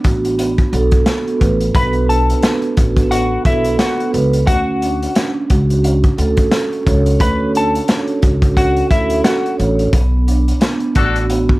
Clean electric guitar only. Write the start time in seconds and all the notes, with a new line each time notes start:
1.76 B4 B5
2.09 A4 A5
3.11 F#4 F#5
3.46 E4 E5
3.80 F#4 F#5
4.47 F#4 F#5
7.21 B4 B5
7.57 A4 A5
8.57 F#4 F#5
8.90 E4 E5
9.24 F#4 F#5